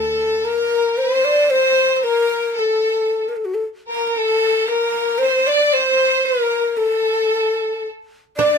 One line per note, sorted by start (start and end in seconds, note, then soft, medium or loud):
0.00 0.45 A4 medium
0.00 0.47 A4 medium
0.45 0.99 A#4 medium
0.45 0.98 A#4 medium
0.98 1.49 C5 medium
0.98 1.26 C5 medium
1.25 1.52 D5 loud
1.50 2.00 C5 medium
1.50 1.96 C5 medium
1.96 2.05 C5 medium
2.03 2.57 A#4 medium
2.03 2.60 A#4 loud
2.56 3.22 A4 medium
2.56 3.30 A4 medium
3.29 3.38 A#4 medium
3.36 3.47 A4 medium
3.45 3.56 F#4 medium
3.54 3.63 A4 medium
3.88 4.13 A#4 medium
3.88 4.07 A#4 medium
4.07 4.18 A#4 medium
4.16 4.69 A4 medium
4.16 4.70 A4 medium
4.68 5.21 A#4 medium
4.68 5.20 A#4 medium
5.18 5.49 C5 loud
5.18 5.47 C5 medium
5.47 5.75 D5 loud
5.47 5.74 D5 medium
5.73 6.27 C5 loud
5.73 6.27 C5 medium
6.26 6.78 A#4 loud
6.26 6.73 A#4 medium
6.74 7.84 A4 medium
6.74 6.80 A#4 soft
6.81 7.86 A4 medium
8.37 8.58 D4 medium
8.37 8.58 D5 loud